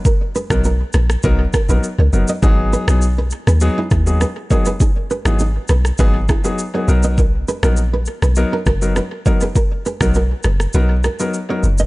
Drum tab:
SH |x-xxx-xxx-xxx-xx|x-xxx-xxx-xxx-xx|x-xxx-xxx-xxx-xx|x-xxx-xxx-xxx-xx|
SD |---r--rr--r-----|---r---r--r-r---|---r--rr--r-----|---r---r--r-r---|
BD |o--o----o-o-----|o---------o---o-|o-------o-o-----|o---------o---o-|

SH |x-xxx-xxx-xxx-xx|
SD |---r--rr--r-----|
BD |o--o------------|